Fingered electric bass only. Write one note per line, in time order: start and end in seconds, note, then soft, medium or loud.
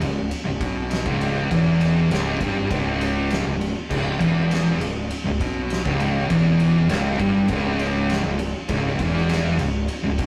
0.01 0.29 C#1 medium
0.46 0.59 C#1 medium
0.60 1.02 B1 loud
1.05 1.48 C#1 medium
1.51 2.07 E1 medium
2.11 2.39 C#1 loud
2.40 2.68 G1 loud
2.70 3.41 C#1 loud
3.46 3.74 C#1 medium
3.90 4.18 C#1 loud
4.20 4.77 E1 loud
4.81 5.09 C#1 medium
5.25 5.39 C#1 medium
5.40 5.82 B1 loud
5.85 6.27 C#1 loud
6.30 6.86 E1 medium
6.90 7.18 C#1 loud
7.19 7.47 G1 loud
7.49 8.20 C#1 loud
8.24 8.52 C#1 medium
8.68 8.97 C#1 loud
8.99 9.55 E1 loud
9.59 9.87 C#1 medium
10.04 10.17 C#1 medium
10.18 10.26 B1 medium